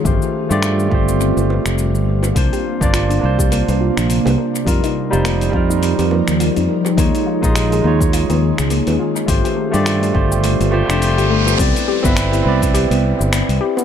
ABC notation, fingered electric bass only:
X:1
M:4/4
L:1/16
Q:"Swing 16ths" 1/4=104
K:Gdor
V:1 name="Fingered electric bass" clef=bass
G,,, z2 G,,3 G,,,3 G,,,2 F,,,2 G,,,3 | C,, z2 G,,,3 C,,3 C,,2 B,,,2 C,, z2 | F,, z2 F,,,3 F,,3 F,,2 _E,,2 F,, z2 | _E,, z2 B,,,3 E,,3 E,,2 _D,,2 E,, z2 |
G,,, z2 G,,3 G,,,3 G,,,2 F,,,2 G,,,3 | [K:C] C,, z2 G,,,3 C,,3 C,,2 G,,,2 C,, z2 |]